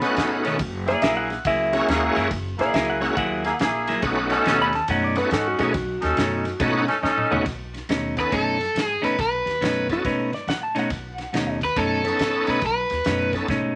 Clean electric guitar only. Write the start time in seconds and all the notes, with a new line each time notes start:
0.03 muted clean electric guitar stroke
0.17 muted clean electric guitar stroke
0.45 B2 D#3 A3 C#4
0.62 muted clean electric guitar stroke
0.88 muted clean electric guitar stroke
1.03 F#3 A#3 E4 G#4
1.31 muted clean electric guitar stroke
1.46 F#3 A#3 E4 G#4
1.89 muted clean electric guitar stroke
2.16 F#3 A#3 E4 G#4
2.32 muted clean electric guitar stroke
2.60 muted clean electric guitar stroke
2.74 F#3 A#3 E4 G#4
3.03 muted clean electric guitar stroke
3.17 F#3 A#3 E4 G#4
3.61 muted clean electric guitar stroke
3.88 F#3 A#3 E4 G#4
4.03 muted clean electric guitar stroke
4.31 muted clean electric guitar stroke
4.46 B2 A3 C#4 D#4
4.74 muted clean electric guitar stroke
4.89 B2 A3 C#4 D#4
5.17 muted clean electric guitar stroke
5.32 muted clean electric guitar stroke
5.60 B2 A3 C#4 D#4
5.76 muted clean electric guitar stroke
6.02 muted clean electric guitar stroke
6.17 B2 A3 C#4 D#4
6.46 muted clean electric guitar stroke
6.60 B2 A3 C#4 D#4
6.88 muted clean electric guitar stroke
7.03 muted clean electric guitar stroke
7.31 B2 A3 C#4 D#4
7.46 muted clean electric guitar stroke
7.74 muted clean electric guitar stroke
7.89 B2 A3 C#4 D#4
8.17 muted clean electric guitar stroke
8.31 B2 A3 C#4 D#4
8.59 muted clean electric guitar stroke
8.74 muted clean electric guitar stroke
9.02 B2 A3 C#4 D#4
9.45 muted clean electric guitar stroke
9.61 B2 A3 C#4 D#4
9.89 muted clean electric guitar stroke
10.04 B2 A3 C#4 D#4
10.32 muted clean electric guitar stroke
10.47 muted clean electric guitar stroke
10.75 B2 A3 C#4 D#4
10.91 muted clean electric guitar stroke
11.18 muted clean electric guitar stroke
11.33 B2 A3 C#4 D#4
11.61 muted clean electric guitar stroke
11.76 B2 A3 C#4 D#4
12.04 muted clean electric guitar stroke
12.19 muted clean electric guitar stroke
12.47 B2 A3 C#4 D#4
12.62 muted clean electric guitar stroke
12.91 muted clean electric guitar stroke
13.06 B2 A3 C#4 D#4
13.33 muted clean electric guitar stroke
13.49 B2 A3 C#4 D#4